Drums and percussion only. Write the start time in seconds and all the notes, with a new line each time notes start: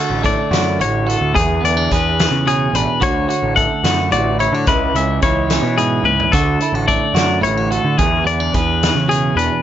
0.24 kick, closed hi-hat
0.53 snare, closed hi-hat
0.81 closed hi-hat
1.10 closed hi-hat
1.36 kick, closed hi-hat
1.65 closed hi-hat
1.92 kick, closed hi-hat
2.19 snare, closed hi-hat
2.47 closed hi-hat
2.75 closed hi-hat
3.02 kick, closed hi-hat
3.30 closed hi-hat
3.57 kick, closed hi-hat
3.84 snare, closed hi-hat
4.12 closed hi-hat
4.40 closed hi-hat
4.67 kick, closed hi-hat
4.95 closed hi-hat
5.22 kick, closed hi-hat
5.50 snare, closed hi-hat
5.78 closed hi-hat
6.05 high tom
6.20 floor tom
6.33 kick, closed hi-hat
6.60 closed hi-hat
6.89 kick, closed hi-hat
7.16 snare, closed hi-hat
7.44 closed hi-hat
7.72 closed hi-hat
7.98 kick, closed hi-hat
8.27 closed hi-hat
8.54 kick, closed hi-hat
8.83 snare, closed hi-hat
9.11 closed hi-hat
9.39 closed hi-hat